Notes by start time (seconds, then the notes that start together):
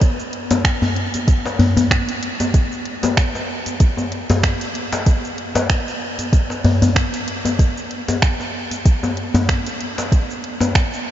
0.01 kick, closed hi-hat, shaker
0.20 shaker
0.33 closed hi-hat
0.51 closed hi-hat, djembe slap, djembe tone, shaker
0.65 finger snap, kick, closed hi-hat, shaker
0.82 djembe slap, djembe bass, shaker
0.96 closed hi-hat
1.14 closed hi-hat, djembe tone, shaker
1.28 kick, closed hi-hat, shaker
1.46 djembe slap, shaker
1.59 closed hi-hat, djembe tone, djembe bass
1.77 closed hi-hat, djembe bass, shaker
1.91 finger snap, kick, shaker
2.09 closed hi-hat, shaker
2.23 closed hi-hat
2.40 closed hi-hat, djembe tone, shaker
2.54 kick, closed hi-hat, shaker
2.72 shaker
2.85 closed hi-hat
3.03 closed hi-hat, djembe slap, djembe tone, shaker
3.17 finger snap, kick, closed hi-hat, shaker
3.35 djembe slap, shaker
3.66 closed hi-hat, djembe tone, shaker
3.80 kick, closed hi-hat, shaker
3.97 djembe tone, shaker
4.12 closed hi-hat
4.30 closed hi-hat, djembe slap, djembe bass, shaker
4.43 finger snap, kick, shaker
4.61 closed hi-hat, shaker
4.75 closed hi-hat
4.92 closed hi-hat, djembe slap, shaker
5.06 kick, closed hi-hat, shaker
5.25 shaker
5.38 closed hi-hat
5.55 closed hi-hat, djembe slap, djembe tone, shaker
5.70 finger snap, kick, closed hi-hat, shaker
5.88 shaker
6.19 closed hi-hat, djembe tone, shaker
6.33 kick, closed hi-hat, shaker
6.50 djembe slap, shaker
6.64 closed hi-hat, djembe tone, djembe bass
6.82 closed hi-hat, djembe bass, shaker
6.96 finger snap, kick, shaker
7.14 closed hi-hat, shaker
7.28 closed hi-hat
7.45 closed hi-hat, djembe tone, shaker
7.59 kick, closed hi-hat, shaker
7.77 shaker
7.91 closed hi-hat
8.08 closed hi-hat, djembe slap, djembe tone, shaker
8.22 finger snap, kick, closed hi-hat, shaker
8.40 djembe slap, shaker
8.71 closed hi-hat, djembe tone, shaker
8.85 kick, closed hi-hat, shaker
9.03 djembe tone, shaker
9.17 closed hi-hat
9.34 closed hi-hat, djembe slap, djembe bass, shaker
9.49 finger snap, kick, shaker
9.67 closed hi-hat, shaker
9.81 closed hi-hat
9.98 closed hi-hat, djembe slap, shaker
10.12 kick, closed hi-hat, shaker
10.30 shaker
10.44 closed hi-hat
10.61 closed hi-hat, djembe slap, djembe tone, shaker
10.75 finger snap, kick, closed hi-hat, shaker
10.93 shaker